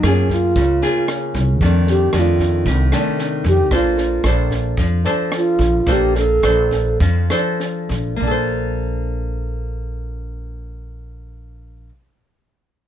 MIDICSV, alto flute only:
0, 0, Header, 1, 2, 480
1, 0, Start_track
1, 0, Key_signature, -2, "major"
1, 0, Tempo, 527704
1, 1467, Time_signature, 4, 2, 24, 8
1, 4350, Tempo, 549954
1, 5790, Tempo, 591716
1, 7230, Tempo, 619835
1, 10848, End_track
2, 0, Start_track
2, 0, Title_t, "Alto flute"
2, 0, Program_c, 0, 73
2, 73, Note_on_c, 0, 61, 74
2, 286, Note_off_c, 0, 61, 0
2, 292, Note_on_c, 0, 65, 89
2, 963, Note_off_c, 0, 65, 0
2, 1727, Note_on_c, 0, 67, 87
2, 1992, Note_on_c, 0, 65, 75
2, 2006, Note_off_c, 0, 67, 0
2, 2448, Note_off_c, 0, 65, 0
2, 3169, Note_on_c, 0, 67, 101
2, 3414, Note_on_c, 0, 65, 85
2, 3427, Note_off_c, 0, 67, 0
2, 3879, Note_off_c, 0, 65, 0
2, 4866, Note_on_c, 0, 65, 83
2, 5342, Note_on_c, 0, 67, 81
2, 5355, Note_off_c, 0, 65, 0
2, 5560, Note_off_c, 0, 67, 0
2, 5565, Note_on_c, 0, 69, 92
2, 6233, Note_off_c, 0, 69, 0
2, 10848, End_track
0, 0, End_of_file